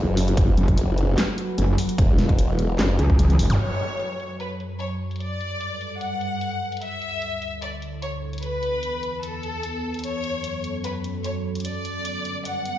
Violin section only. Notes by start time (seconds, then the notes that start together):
3.59 C#5
4.40 B4
4.80 C#5
5.20 D5
6.01 F#5
6.82 E5
7.62 D5
8.02 C#5
8.43 B4
9.23 A4
10.04 C#5
10.84 B4
11.24 C#5
11.65 D5
12.45 F#5